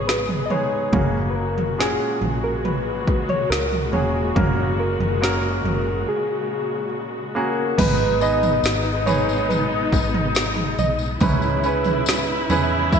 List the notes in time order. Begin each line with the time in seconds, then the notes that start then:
Already playing: G#1 C#3 G#3 B3 D#4 G#4
0.07 B4, snare
0.29 floor tom
0.46 E1 D#5
0.50 G#3 B3 D#4 G#4 C#5, floor tom
0.92 F#1 A#2 C#3 G#3 A#3 C#4 F#4 G#4, kick, floor tom
1.30 B4
1.36 A#4
1.58 floor tom
1.78 A#2 C#4 F#4 G#4, snare
2.21 A#1, floor tom
2.44 A#4
2.65 B4, floor tom
3.07 C#2, kick
3.29 C#5, floor tom
3.50 C#2 A#4, snare
3.73 floor tom
3.92 E1 A#3 C#4 F#4 G#4 C#5, floor tom
4.36 F#1 C#3 A#3 C#4 F#4 A#4, kick, floor tom
4.80 A#4
5.00 F#1, floor tom
5.21 A#3 C#4 F#4 A#4, snare
5.64 F#1 A#4, floor tom
6.09 G#4
7.35 A#3 C#4 F#4 G#4 A#4
7.77 G#1 G#2 B2 D#3 G#3 B3 D#4 G#4 B4, kick, floor tom, crash, tambourine
8.21 B3 D#4 G#4 B4 D#5, tambourine
8.43 floor tom, tambourine
8.63 G#1, snare, tambourine
9.06 B3 D#4 G#4 B4 C#5, floor tom, tambourine
9.29 tambourine
9.49 B4, floor tom, tambourine
9.92 G#1, kick, tambourine
10.14 floor tom
10.35 snare, tambourine
10.57 floor tom
10.78 B1 D#5, floor tom, tambourine
10.99 tambourine
11.20 C#2 G#2 B2 C#3 G#3 C#4 E4 G#4 B4 C#5, kick, floor tom, tambourine
11.42 tambourine
11.63 C#4 E4 G#4 B4, tambourine
11.84 floor tom, tambourine
12.06 snare, tambourine
12.49 E2 C#4 E4 G#4 B4, floor tom, tambourine
12.93 E5, kick, floor tom, tambourine